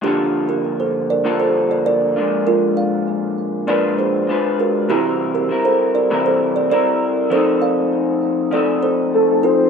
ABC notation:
X:1
M:4/4
L:1/16
Q:1/4=99
K:Gm
V:1 name="Soft synth lead"
z16 | z16 | z16 | z12 A2 c2 |]
V:2 name="Kalimba"
[DG]2 z [GB] z [Ac] z [Bd] z [Ac] z [Bd] [Bd]3 z | [FB]2 [df]4 z2 [Bd]2 [_Ac] z3 [^FB] z | [=EG]2 z [GB] z [Ac] z [Bd] z [Ac] z [Bd] [Bd]3 z | [Ac]2 [df]4 z2 [Ad]2 [Ac] z3 [FA] z |]
V:3 name="Clean electric guitar"
[G,,D,F,B,FA]8 [G,,D,F,B,FA]6 [B,,F,_A,DF]2- | [B,,F,_A,DF]8 [B,,F,A,DF_c]4 [A,DFc]4 | [C,=E,G,C=EB]4 [G,CEB]4 [C,E,G,CEB]4 [G,CEB]4 | [F,CEA]8 [F,CEA]8 |]